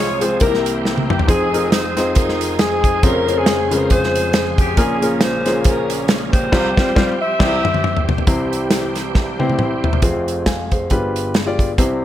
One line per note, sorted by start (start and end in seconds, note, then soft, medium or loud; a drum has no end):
0.00 0.37 C2 medium
0.00 0.37 C3 medium
0.00 0.40 C3 medium
0.00 0.38 F3 medium
0.00 0.40 G#3 medium
0.00 0.37 F4 medium
0.00 0.37 G#4 medium
0.00 0.40 G#4 medium
0.00 0.22 C#5 loud
0.21 0.40 G#3 medium
0.21 0.40 C4 medium
0.21 0.40 F4 medium
0.21 0.41 G#4 medium
0.21 0.41 C5 medium
0.21 closed hi-hat medium
0.40 1.24 C2 medium
0.40 1.24 C3 medium
0.40 1.28 E3 medium
0.40 1.27 A#3 medium
0.40 1.13 A#3 medium
0.40 3.00 C4 medium
0.40 1.13 C4 medium
0.40 0.47 D#4 medium
0.40 1.25 E4 medium
0.40 1.28 G4 medium
0.40 1.14 G4 medium
0.40 1.09 G4 medium
0.40 0.78 A#4 medium
0.40 1.13 A#4 medium
0.40 kick loud
0.40 closed hi-hat medium
0.46 1.16 E4 medium
0.54 snare soft
0.66 closed hi-hat medium
0.85 snare medium
0.98 high tom medium
1.10 1.27 G4 medium
1.10 mid tom medium
1.19 floor tom medium
1.27 2.99 F1 medium
1.27 2.99 F2 medium
1.27 7.36 F3 medium
1.27 1.45 C4 medium
1.27 2.12 C4 medium
1.27 1.45 D#4 medium
1.27 3.02 D#4 medium
1.27 1.72 D#4 medium
1.27 1.45 F4 medium
1.27 1.45 G#4 medium
1.27 6.48 G#4 medium
1.27 1.69 G#4 loud
1.27 1.45 C5 medium
1.27 kick loud
1.27 closed hi-hat loud
1.53 1.82 C4 medium
1.53 1.82 D#4 medium
1.53 1.82 F4 medium
1.53 1.82 G#4 medium
1.53 1.82 A#4 medium
1.53 closed hi-hat medium
1.72 2.16 D#4 medium
1.72 2.56 G#4 medium
1.72 2.13 C5 loud
1.72 snare loud
1.72 closed hi-hat loud
1.97 2.55 C4 medium
1.97 2.55 D#4 medium
1.97 2.55 F4 medium
1.97 2.55 G#4 medium
1.97 2.55 C5 medium
1.97 snare soft
1.97 closed hi-hat medium
2.15 2.59 D#4 medium
2.15 2.60 A#4 loud
2.15 kick loud
2.15 closed hi-hat medium
2.29 snare soft
2.41 closed hi-hat medium
2.59 3.01 C4 medium
2.59 3.01 D#4 medium
2.59 3.03 G#4 loud
2.59 snare loud
2.59 closed hi-hat medium
2.84 kick medium
2.84 closed hi-hat medium
3.03 4.74 F1 medium
3.03 4.74 F2 medium
3.03 6.50 C#3 medium
3.03 3.21 C4 medium
3.03 3.20 C#4 medium
3.03 3.38 C#4 medium
3.03 3.20 F4 medium
3.03 3.21 G#4 medium
3.03 3.38 A#4 loud
3.03 3.21 C5 medium
3.03 4.76 C5 medium
3.03 kick loud
3.03 closed hi-hat loud
3.27 3.56 C#4 medium
3.27 3.56 F4 medium
3.27 3.56 G#4 medium
3.27 3.56 A#4 medium
3.27 3.56 C5 medium
3.27 closed hi-hat medium
3.38 4.21 C4 medium
3.38 4.22 C#4 medium
3.38 3.72 G#4 loud
3.46 snare loud
3.46 closed hi-hat loud
3.71 4.30 C#3 medium
3.71 4.30 G#3 medium
3.71 4.30 F4 medium
3.71 4.30 G#4 medium
3.71 3.91 A#4 loud
3.71 3.76 B4 medium
3.71 closed hi-hat medium
3.77 4.33 C5 medium
3.90 4.74 G#4 medium
3.90 4.56 C5 loud
3.90 kick loud
3.90 closed hi-hat medium
4.03 snare soft
4.16 closed hi-hat medium
4.33 snare loud
4.33 closed hi-hat medium
4.58 4.79 G4 medium
4.58 kick loud
4.58 closed hi-hat medium
4.77 6.48 A#1 medium
4.77 6.48 A#2 medium
4.77 4.95 A#3 medium
4.77 6.51 A#3 medium
4.77 4.95 C#4 medium
4.77 5.61 C#4 medium
4.77 4.95 F4 medium
4.77 5.09 F4 medium
4.77 4.95 G#4 medium
4.77 5.09 G#4 loud
4.77 4.95 A#4 medium
4.77 kick loud
4.77 closed hi-hat loud
5.02 5.31 A#3 medium
5.02 5.31 C#4 medium
5.02 5.31 F4 medium
5.02 5.31 G#4 medium
5.02 5.31 A#4 medium
5.02 closed hi-hat medium
5.21 5.65 F4 medium
5.21 6.05 G#4 medium
5.21 5.63 C5 loud
5.21 snare loud
5.21 closed hi-hat loud
5.46 6.04 A#3 medium
5.46 6.04 C#4 medium
5.46 6.05 F4 medium
5.46 6.05 G#4 medium
5.46 6.05 C5 medium
5.46 snare soft
5.46 closed hi-hat medium
5.64 6.49 C#4 medium
5.64 6.32 F4 medium
5.64 6.05 A#4 medium
5.64 kick loud
5.64 closed hi-hat loud
5.90 closed hi-hat medium
6.08 snare loud
6.08 closed hi-hat medium
6.33 7.17 F4 medium
6.33 7.17 G4 medium
6.33 7.17 C5 loud
6.33 kick loud
6.33 closed hi-hat medium
6.52 6.69 C2 loud
6.52 6.69 C3 loud
6.52 6.69 G3 loud
6.52 8.26 G3 medium
6.52 6.69 C4 loud
6.52 8.26 C4 medium
6.52 6.69 F4 loud
6.52 6.69 G4 loud
6.52 8.26 G4 medium
6.52 6.69 C5 loud
6.52 kick loud
6.52 snare loud
6.52 crash medium
6.76 6.90 G3 medium
6.76 6.90 C4 loud
6.76 6.90 F4 medium
6.76 6.90 G4 medium
6.76 6.90 C5 medium
6.76 kick loud
6.76 snare loud
6.95 7.13 G3 loud
6.95 7.13 C4 loud
6.95 7.13 F4 loud
6.95 7.13 G4 loud
6.95 7.13 C5 loud
6.95 kick loud
6.95 snare loud
7.22 8.05 G4 medium
7.22 8.05 C5 medium
7.22 8.09 E5 loud
7.39 7.56 C2 loud
7.39 7.57 C3 loud
7.39 8.26 E3 medium
7.39 7.56 G3 loud
7.39 7.56 C4 medium
7.39 7.56 G4 loud
7.39 7.57 C5 loud
7.39 kick loud
7.39 snare loud
7.39 crash medium
7.45 7.60 E4 loud
7.65 mid tom loud
7.74 mid tom medium
7.84 mid tom loud
7.97 floor tom medium
8.09 floor tom loud
8.18 floor tom medium
8.27 9.99 C2 medium
8.27 9.98 C3 medium
8.27 10.01 E3 medium
8.27 10.01 G3 medium
8.27 10.02 G3 medium
8.27 8.90 C4 medium
8.27 10.01 C4 medium
8.27 8.90 E4 medium
8.27 10.01 E4 medium
8.27 8.91 G4 medium
8.27 10.01 G4 medium
8.27 8.91 C5 medium
8.27 kick loud
8.27 closed hi-hat loud
8.53 closed hi-hat medium
8.71 snare loud
8.71 closed hi-hat loud
8.95 snare soft
8.95 closed hi-hat medium
9.15 kick loud
9.15 snare soft
9.39 9.85 C4 medium
9.39 9.85 E4 medium
9.39 9.85 G4 medium
9.39 9.57 C5 loud
9.39 high tom medium
9.50 high tom medium
9.59 9.82 C5 medium
9.59 mid tom medium
9.84 10.01 C5 medium
9.84 10.25 E5 medium
9.84 floor tom medium
9.93 floor tom medium
10.02 10.86 F1 medium
10.02 10.86 F2 medium
10.02 10.48 C4 medium
10.02 10.48 F4 medium
10.02 10.46 G#4 medium
10.02 10.46 C5 medium
10.02 kick loud
10.02 closed hi-hat medium
10.28 closed hi-hat medium
10.46 10.71 F5 medium
10.46 10.70 G#5 medium
10.46 kick medium
10.46 snare loud
10.46 closed hi-hat loud
10.71 10.90 G#4 medium
10.71 11.13 C5 medium
10.71 kick medium
10.71 closed hi-hat medium
10.90 11.75 G1 medium
10.90 11.74 G2 medium
10.90 11.34 F4 medium
10.90 11.34 G4 medium
10.90 11.35 G#4 medium
10.90 11.35 B4 medium
10.90 kick medium
10.90 closed hi-hat medium
11.16 closed hi-hat medium
11.34 snare loud
11.34 closed hi-hat medium
11.46 11.69 F4 medium
11.46 11.69 G4 medium
11.46 11.69 G#4 medium
11.46 11.70 D5 medium
11.59 kick medium
11.59 closed hi-hat medium
11.78 12.05 C2 medium
11.78 12.05 C3 medium
11.78 12.05 C4 medium
11.78 12.05 E4 medium
11.78 12.05 G4 medium
11.78 12.05 C5 medium
11.78 kick loud
11.78 closed hi-hat medium